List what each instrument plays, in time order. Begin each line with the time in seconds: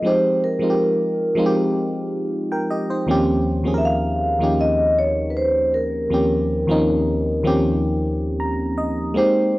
0.02 fm electric piano F3 G#3 C4 D#4, vibraphone C5
0.07 fm electric piano G4
0.44 vibraphone A#4
0.59 fm electric piano F3 G#3 C4 D#4
0.63 fm electric piano F4
0.70 fm electric piano G4
1.35 fm electric piano F3 G#3 C4 D#4
1.39 fm electric piano F4
1.46 fm electric piano G4
2.52 fm electric piano A#4 G5
2.70 fm electric piano G4 D#5
2.90 fm electric piano D#4 C5
3.07 fm electric piano D#2 F3 A#3 C4 C#4
3.11 fm electric piano G4
3.63 fm electric piano D#2 F3 A#3 C4 C#4
3.67 fm electric piano G#4
3.74 fm electric piano A#4, vibraphone E5
3.85 vibraphone F5
4.39 fm electric piano D#2 F3 A#3 C#4 D#4
4.43 fm electric piano G4
4.61 vibraphone D#5
4.99 vibraphone C#5
5.30 vibraphone B4
5.37 vibraphone C5
5.74 vibraphone A#4
6.10 fm electric piano D#2 F3 A#3 C4 C#4
6.14 fm electric piano G4
6.67 fm electric piano D#2 F3 A#3 C4 C#4
6.71 fm electric piano D#4
7.43 fm electric piano D#2 F3 A#3 C4 C#4 G4
8.40 fm electric piano A#5
8.78 fm electric piano D#5
9.14 fm electric piano G#3 A#3 C4 D#4 G4, vibraphone C5